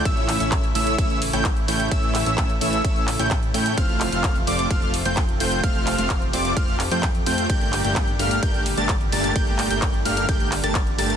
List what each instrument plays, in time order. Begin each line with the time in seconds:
Already playing: analog synth pad A3
0.05 analog synth bass A1, analog synth pad C#3 E3 E4, supersaw synth E4, analog synth lead E6, kick, closed hi-hat, ride
0.17 closed hi-hat
0.28 clap, open hi-hat
0.40 analog synth bass A1, supersaw synth A3 C#4 E4 C#5 E5, analog synth lead E6, closed hi-hat
0.52 kick, clap, closed hi-hat, ride
0.64 closed hi-hat
0.75 analog synth bass A1, supersaw synth A3 C#4 E4 C#5 E5, analog synth lead E6, open hi-hat
0.87 closed hi-hat
0.98 supersaw synth A3 C#4 E4 C#5, analog synth lead E6, kick, closed hi-hat, ride
1.10 closed hi-hat
1.22 open hi-hat
1.33 analog synth bass A1, supersaw synth A3 C#4 E4 C#5 G5, analog synth lead G6, closed hi-hat
1.45 kick, clap, closed hi-hat, ride
1.57 closed hi-hat
1.68 analog synth bass A1, supersaw synth A3 C#4 E4 C#5 G5, analog synth lead G6, open hi-hat
1.80 closed hi-hat
1.91 supersaw synth A3 C#4 E4 C#5, analog synth lead E6, kick, closed hi-hat, ride
2.03 closed hi-hat
2.15 clap, open hi-hat
2.26 analog synth bass A1, supersaw synth A3 C#4 E4 C#5 E5, analog synth lead E6, closed hi-hat
2.38 kick, clap, closed hi-hat, ride
2.50 closed hi-hat
2.61 analog synth bass A1, supersaw synth A3 C#4 E4 C#5 E5, analog synth lead E6, open hi-hat
2.73 closed hi-hat
2.85 supersaw synth A3 C#4 E4 C#5 E5, kick, closed hi-hat, ride
2.96 closed hi-hat
3.08 clap, open hi-hat
3.19 analog synth bass A1, supersaw synth A3 C#4 E4 C#5 G5, analog synth lead G6, closed hi-hat
3.31 kick, clap, closed hi-hat, ride
3.43 closed hi-hat
3.54 analog synth bass A2, supersaw synth A3 C#4 E4 C#5 G5, analog synth lead G6, open hi-hat
3.66 closed hi-hat
3.78 analog synth bass F1, analog synth pad C3 F3 F4, supersaw synth A3 C4 F4 C5 F5, analog synth lead F6, kick, closed hi-hat, ride
3.89 closed hi-hat
4.01 clap, open hi-hat
4.12 analog synth bass F1, supersaw synth A3 C4 F4 C5 F5, analog synth lead F6, closed hi-hat
4.24 kick, clap, closed hi-hat, ride
4.36 closed hi-hat
4.47 analog synth bass F1, supersaw synth A3 C4 F4 C5 D5, analog synth lead D6, open hi-hat
4.59 closed hi-hat
4.71 supersaw synth A3 C4 F4 C5 F5, analog synth lead F6, kick, closed hi-hat, ride
4.82 closed hi-hat
4.94 open hi-hat
5.05 analog synth bass F1, supersaw synth A3 C4 F4 C5 G5, analog synth lead G6, closed hi-hat
5.17 kick, clap, closed hi-hat, ride
5.29 closed hi-hat
5.40 analog synth bass F1, supersaw synth A3 C4 F4 C5 G5, analog synth lead G6, open hi-hat
5.52 closed hi-hat
5.64 supersaw synth A3 F4 F5, analog synth pad G4, analog synth lead F6, kick, closed hi-hat, ride
5.75 closed hi-hat
5.87 clap, open hi-hat
5.98 analog synth bass F1, supersaw synth A3 C4 F4 C5 F5, analog synth lead F6, closed hi-hat
6.10 kick, clap, closed hi-hat, ride
6.22 closed hi-hat
6.33 analog synth bass F1, supersaw synth A3 C4 F4 C5 D5, analog synth lead D6, open hi-hat
6.45 closed hi-hat
6.57 supersaw synth A3 C4 F4 C5, analog synth lead F6, kick, closed hi-hat, ride
6.68 closed hi-hat
6.80 clap, open hi-hat
6.91 analog synth bass F2, supersaw synth A3 C4 F4 C5 G5, analog synth lead G6, closed hi-hat
7.03 kick, clap, closed hi-hat, ride
7.15 closed hi-hat
7.26 analog synth bass F2, supersaw synth A3 C4 F4 C5 G5, analog synth lead G6, open hi-hat
7.38 closed hi-hat
7.50 analog synth bass G1, analog synth pad A#2 D3 G3, supersaw synth A3 D4 G4 A#4 G5, analog synth lead G6, kick, closed hi-hat, ride
7.61 closed hi-hat
7.73 clap, open hi-hat
7.85 analog synth bass G1, supersaw synth A3 D4 G4 A#4 G5, analog synth lead G6, closed hi-hat
7.96 kick, clap, closed hi-hat, ride
8.08 closed hi-hat
8.19 analog synth bass G1, supersaw synth A3 D4 G4 A#4 F5, analog synth lead F6, open hi-hat
8.31 closed hi-hat
8.43 supersaw synth A3 D4 G4 A#4 G5, analog synth lead G6, kick, closed hi-hat, ride
8.54 closed hi-hat
8.66 open hi-hat
8.78 analog synth bass G1, supersaw synth A3 D4 G4 A#4 A5, analog synth lead A6, closed hi-hat
8.89 kick, clap, closed hi-hat, ride
9.01 closed hi-hat
9.12 analog synth bass G1, supersaw synth A3 D4 G4 A#4 A5, analog synth lead A6, open hi-hat
9.24 closed hi-hat
9.36 supersaw synth A3 D4 G4 A#4 G5, analog synth lead G6, kick, closed hi-hat, ride
9.47 closed hi-hat
9.59 clap, open hi-hat
9.71 analog synth bass G1, supersaw synth A3 D4 G4 A#4 G5, analog synth lead G6, closed hi-hat
9.82 kick, clap, closed hi-hat, ride
9.94 closed hi-hat
10.05 analog synth bass G1, supersaw synth A3 D4 G4 A#4 F5, analog synth lead F6, open hi-hat
10.17 closed hi-hat
10.29 supersaw synth A3 D4 G4 A#4 G5, analog synth lead G6, kick, closed hi-hat, ride
10.40 closed hi-hat
10.52 clap, open hi-hat
10.64 analog synth bass G1, supersaw synth A3 D4 G4 A#4 A5, analog synth lead A6, closed hi-hat
10.75 kick, clap, closed hi-hat, ride
10.87 closed hi-hat
10.98 analog synth bass G1, supersaw synth A3 D4 G4 A#4 A5, analog synth lead A6, open hi-hat
11.10 closed hi-hat